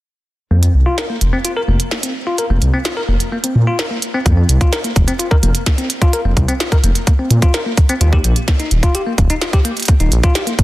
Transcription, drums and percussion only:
0.63 closed hi-hat medium
0.98 snare loud
0.98 closed hi-hat medium
1.21 closed hi-hat medium
1.45 closed hi-hat medium
1.80 closed hi-hat medium
1.91 snare loud
2.03 closed hi-hat loud
2.38 closed hi-hat medium
2.62 closed hi-hat medium
2.85 snare loud
2.85 closed hi-hat medium
3.20 closed hi-hat medium
3.44 closed hi-hat medium
3.79 snare loud
3.79 closed hi-hat medium
4.02 closed hi-hat medium
4.26 kick loud
4.26 closed hi-hat medium
4.49 closed hi-hat medium
4.61 kick loud
4.61 closed hi-hat medium
4.73 snare loud
4.73 closed hi-hat medium
4.84 closed hi-hat soft
4.96 kick loud
4.96 closed hi-hat medium
5.08 closed hi-hat medium
5.20 closed hi-hat medium
5.31 kick loud
5.43 closed hi-hat medium
5.55 closed hi-hat medium
5.66 kick loud
5.66 snare loud
5.66 closed hi-hat medium
5.78 closed hi-hat soft
5.90 closed hi-hat medium
6.02 kick loud
6.02 closed hi-hat medium
6.13 closed hi-hat medium
6.37 kick loud
6.37 closed hi-hat medium
6.48 closed hi-hat medium
6.60 snare loud
6.60 closed hi-hat medium
6.72 kick loud
6.72 closed hi-hat soft
6.84 closed hi-hat medium
6.95 closed hi-hat medium
7.07 kick loud
7.07 closed hi-hat medium
7.31 closed hi-hat medium
7.42 kick loud
7.42 closed hi-hat medium
7.54 snare loud
7.54 closed hi-hat medium
7.77 kick loud
7.77 closed hi-hat medium
7.89 closed hi-hat medium
8.01 closed hi-hat medium
8.13 kick loud
8.24 closed hi-hat medium
8.36 closed hi-hat medium
8.48 kick loud
8.48 snare loud
8.48 closed hi-hat medium
8.60 closed hi-hat soft
8.71 closed hi-hat medium
8.83 kick loud
8.83 closed hi-hat medium
8.95 closed hi-hat medium
9.18 kick loud
9.18 closed hi-hat medium
9.30 closed hi-hat medium
9.41 snare loud
9.41 closed hi-hat medium
9.53 kick loud
9.53 closed hi-hat soft
9.65 closed hi-hat medium
9.77 closed hi-hat soft
9.80 closed hi-hat soft
9.82 closed hi-hat soft
9.85 closed hi-hat soft
9.88 kick loud
9.88 closed hi-hat medium
10.00 closed hi-hat soft
10.12 closed hi-hat medium
10.23 kick loud
10.23 closed hi-hat medium
10.35 snare loud
10.35 closed hi-hat medium
10.47 closed hi-hat soft
10.59 kick loud
10.59 closed hi-hat medium

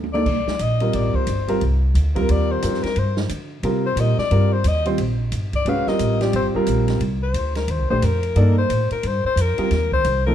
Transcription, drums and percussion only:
0.03 high tom medium
0.15 high tom medium
0.26 kick medium
0.26 crash medium
0.47 snare medium
0.59 hi-hat pedal soft
0.59 ride medium
0.80 ride soft
0.93 ride medium
1.14 kick medium
1.27 hi-hat pedal medium
1.27 ride medium
1.48 ride soft
1.61 ride medium
1.95 hi-hat pedal soft
1.95 ride medium
2.16 kick medium
2.16 ride soft
2.29 ride medium
2.62 hi-hat pedal medium
2.62 ride medium
2.74 snare soft
2.83 snare soft
2.83 ride soft
2.96 ride medium
3.17 snare medium
3.29 hi-hat pedal medium
3.29 ride medium
3.63 ride medium
3.97 hi-hat pedal medium
3.97 ride medium
4.18 snare soft
4.31 ride medium
4.64 hi-hat pedal medium
4.64 ride medium
4.85 ride soft
4.98 ride medium
5.32 hi-hat pedal medium
5.32 ride medium
5.53 kick medium
5.53 ride soft
5.66 ride medium
5.87 snare soft
5.99 hi-hat pedal medium
5.99 ride medium
6.21 snare soft
6.21 ride soft
6.33 ride medium
6.66 hi-hat pedal medium
6.66 ride medium
6.88 snare soft
6.88 ride soft
7.00 ride medium
7.34 hi-hat pedal medium
7.34 ride medium
7.55 snare soft
7.55 ride soft
7.68 ride medium
8.02 hi-hat pedal medium
8.02 ride medium
8.23 ride soft
8.36 ride medium
8.70 hi-hat pedal medium
8.70 ride medium
8.91 ride soft
9.03 ride medium
9.37 hi-hat pedal medium
9.37 ride medium
9.58 ride soft
9.71 snare soft
9.71 ride medium
9.92 kick medium
10.04 hi-hat pedal medium
10.04 ride medium

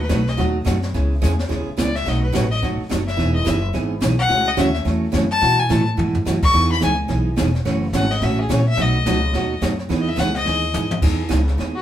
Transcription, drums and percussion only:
0.09 kick soft
0.09 snare medium
0.09 hi-hat pedal medium
0.27 snare soft
0.38 brush sweep medium
0.38 kick soft
0.38 snare medium
0.66 kick soft
0.66 snare medium
0.66 hi-hat pedal medium
0.82 snare soft
0.94 brush sweep soft
0.94 kick soft
0.94 snare soft
1.22 kick soft
1.22 snare medium
1.22 hi-hat pedal medium
1.39 snare soft
1.50 brush sweep soft
1.50 kick soft
1.50 snare medium
1.78 kick soft
1.78 snare medium
1.78 hi-hat pedal medium
1.95 snare soft
2.07 brush sweep soft
2.07 kick soft
2.07 snare soft
2.35 kick soft
2.35 snare medium
2.35 hi-hat pedal medium
2.63 brush sweep medium
2.63 kick soft
2.63 snare soft
2.91 kick soft
2.91 snare medium
2.91 hi-hat pedal medium
3.08 snare soft
3.19 brush sweep medium
3.19 kick soft
3.19 snare soft
3.46 kick soft
3.46 snare medium
3.46 hi-hat pedal medium
3.74 brush sweep medium
3.74 kick soft
3.74 snare soft
4.02 kick soft
4.02 snare medium
4.02 hi-hat pedal medium
4.30 brush sweep medium
4.30 kick soft
4.30 snare soft
4.57 kick soft
4.57 snare medium
4.57 hi-hat pedal medium
4.75 snare soft
4.86 brush sweep medium
4.86 kick soft
4.86 snare medium
5.13 kick soft
5.13 snare medium
5.13 hi-hat pedal medium
5.42 brush sweep soft
5.42 kick soft
5.42 snare soft
5.70 kick soft
5.70 snare medium
5.70 hi-hat pedal medium
5.99 high tom medium
6.15 floor tom medium
6.26 snare medium
6.26 hi-hat pedal medium
6.42 kick medium
6.42 crash medium
6.54 brush sweep medium
6.54 kick soft
6.54 snare soft
6.81 kick soft
6.81 snare medium
6.81 hi-hat pedal medium
7.09 brush sweep medium
7.09 kick soft
7.09 snare soft
7.37 kick soft
7.37 snare medium
7.37 hi-hat pedal medium
7.55 snare soft
7.65 brush sweep medium
7.65 kick soft
7.65 snare medium
7.93 kick soft
7.93 snare medium
7.93 hi-hat pedal medium
8.10 snare soft
8.21 brush sweep medium
8.21 kick soft
8.21 snare medium
8.50 kick soft
8.50 snare medium
8.50 hi-hat pedal medium
8.77 brush sweep medium
8.77 kick soft
8.77 snare medium
9.06 kick soft
9.06 snare medium
9.06 hi-hat pedal medium
9.33 brush sweep medium
9.33 kick soft
9.33 snare medium
9.62 kick soft
9.62 snare medium
9.62 hi-hat pedal medium
9.79 snare soft
9.90 brush sweep soft
9.90 kick soft
9.90 snare soft
10.18 kick soft
10.18 snare medium
10.18 hi-hat pedal medium
10.35 snare soft
10.46 brush sweep medium
10.46 kick soft
10.46 snare medium
10.74 hi-hat pedal medium
10.74 high tom medium
10.91 high tom medium
11.02 brush sweep medium
11.02 kick medium
11.02 snare medium
11.02 crash medium
11.30 kick soft
11.30 snare medium
11.30 hi-hat pedal medium
11.48 snare soft
11.59 brush sweep medium
11.59 kick soft
11.59 snare soft

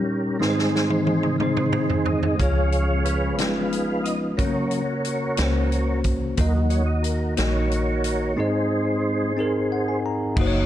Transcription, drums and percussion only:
0.42 snare soft
0.59 snare soft
0.76 snare soft
0.90 high tom medium
1.07 high tom medium
1.23 mid tom medium
1.40 mid tom medium
1.57 mid tom medium
1.73 mid tom medium
1.90 floor tom medium
2.06 floor tom medium
2.23 floor tom medium
2.39 kick medium
2.39 closed hi-hat medium
2.72 closed hi-hat soft
3.05 closed hi-hat medium
3.38 snare medium
3.38 closed hi-hat medium
3.72 closed hi-hat soft
4.05 closed hi-hat medium
4.38 kick medium
4.38 closed hi-hat medium
4.71 closed hi-hat soft
5.04 closed hi-hat medium
5.37 snare medium
5.37 closed hi-hat medium
5.72 closed hi-hat soft
6.04 kick medium
6.04 closed hi-hat medium
6.37 kick medium
6.37 closed hi-hat medium
6.70 closed hi-hat soft
7.04 closed hi-hat medium
7.37 snare medium
7.37 closed hi-hat medium
7.71 closed hi-hat soft
8.04 closed hi-hat medium
10.37 kick loud
10.37 crash medium

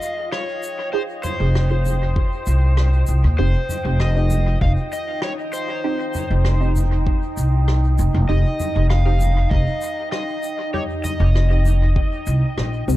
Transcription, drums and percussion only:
0.02 shaker medium
0.32 cross-stick medium
0.63 shaker medium
1.24 mid tom medium
1.24 shaker medium
1.55 cross-stick medium
1.86 mid tom medium
1.86 shaker medium
2.16 kick loud
2.46 shaker medium
2.77 cross-stick medium
3.07 shaker medium
3.69 mid tom medium
3.69 shaker medium
4.00 cross-stick medium
4.30 mid tom medium
4.30 shaker medium
4.61 kick loud
4.93 shaker medium
5.22 cross-stick medium
5.53 shaker medium
6.14 mid tom medium
6.14 shaker medium
6.45 cross-stick medium
6.76 mid tom medium
6.76 shaker medium
7.07 kick loud
7.37 shaker medium
7.68 cross-stick medium
7.98 shaker medium
8.60 mid tom medium
8.60 shaker medium
8.90 cross-stick medium
9.20 mid tom medium
9.20 shaker medium
9.51 kick loud
9.81 shaker medium
10.12 cross-stick medium
10.43 shaker medium
10.74 mid tom medium
11.04 mid tom medium
11.04 shaker medium
11.36 cross-stick medium
11.65 mid tom medium
11.65 shaker medium
11.96 kick loud
12.27 shaker medium
12.58 cross-stick medium
12.89 shaker medium

